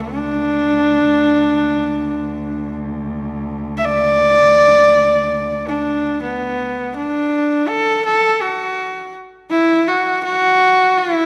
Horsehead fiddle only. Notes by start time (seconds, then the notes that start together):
0.00 D4
3.77 E5
3.85 D5
5.68 D4
6.23 B3
6.96 D4
7.68 A4
8.05 A4
8.41 F#4
9.50 E4
9.87 F#4
10.24 F#4
10.98 E4